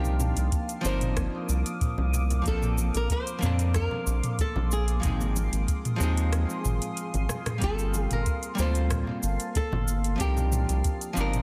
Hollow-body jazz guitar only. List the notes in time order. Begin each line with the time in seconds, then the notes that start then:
Already playing: F3 C4 D4 D#4 A#4
0.81 F3 C4 D4
0.87 D#4 A#4
2.42 F3 A#3 C4
2.47 D4 A4
3.39 F3 A#3 C4
3.44 D4 A5
5.00 F3 G#3 C4
5.05 D#4 G#4
5.96 F3 G#3 C4
6.01 D#4 G#4
7.58 G3 A#3 C4
7.64 F4 A5
8.55 G3 A#3 C4
8.61 F4 A4
10.16 F3 C4 D4
10.21 D#4 A#4
11.13 F3 C4 D4
11.19 D#4 A#4